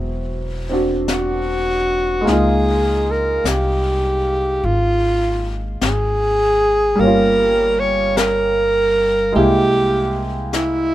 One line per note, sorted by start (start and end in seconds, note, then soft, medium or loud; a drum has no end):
0.00 2.22 E1 medium
0.00 2.26 F#3 soft
0.00 2.26 B3 soft
0.00 0.68 C4 soft
0.00 2.26 E4 medium
0.69 2.26 C4 soft
0.69 2.27 D4 soft
0.69 2.28 F#4 soft
1.08 2.30 F#4 medium
1.08 brush sweep soft
1.08 snare soft
1.08 hi-hat pedal soft
2.21 6.96 G#3 soft
2.21 6.98 A#3 soft
2.27 3.41 C#2 medium
2.27 7.00 D#4 soft
2.27 3.12 G#4 medium
2.27 brush sweep soft
2.27 snare soft
2.32 7.02 F4 medium
3.11 3.49 A#4 medium
3.44 4.59 C2 medium
3.44 4.67 G4 medium
3.44 brush sweep soft
3.44 snare soft
3.44 hi-hat pedal soft
4.63 5.77 G#1 medium
4.63 5.65 F4 medium
4.63 brush sweep soft
5.81 6.95 G#1 medium
5.81 7.01 G#4 medium
5.81 brush sweep soft
5.81 snare soft
5.81 hi-hat pedal soft
6.95 9.31 G1 medium
6.95 9.33 G3 soft
6.95 9.33 A#3 soft
6.95 brush sweep soft
7.00 9.36 C#4 soft
7.00 7.81 A#4 medium
7.07 9.39 F4 soft
7.80 8.19 C#5 medium
8.17 9.35 A#4 medium
8.17 brush sweep soft
8.17 snare soft
8.17 hi-hat pedal medium
9.32 10.95 C2 medium
9.32 10.95 G#3 soft
9.32 10.95 A#3 soft
9.32 10.95 E4 soft
9.32 10.32 G4 medium
9.32 brush sweep soft
9.38 10.95 G4 soft
10.53 10.95 E4 medium
10.53 brush sweep soft
10.53 snare soft
10.53 hi-hat pedal soft